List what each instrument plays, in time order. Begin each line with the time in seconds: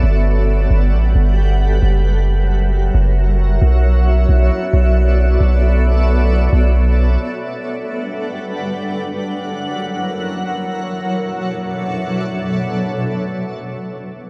Already playing: ambient pad A4
0.03 808-style bass G1, ambient pad G3 G4 B4 F#5
0.70 808-style bass G1
0.93 808-style bass A1
1.15 808-style bass G1
1.82 808-style bass F#1, ambient pad F#3 F#4 A#4 C#5 E5
2.94 808-style bass F#1
3.62 808-style bass B1, ambient pad B3 A4 D5
4.29 808-style bass B1
4.73 808-style bass B1
5.41 808-style bass B1
6.53 808-style bass B1
7.20 ambient pad G3 D4 B4 F#5
8.99 ambient pad F#3 E4 A#4 C#5
10.78 ambient pad B2 F#3 D4 A4 C#5 E5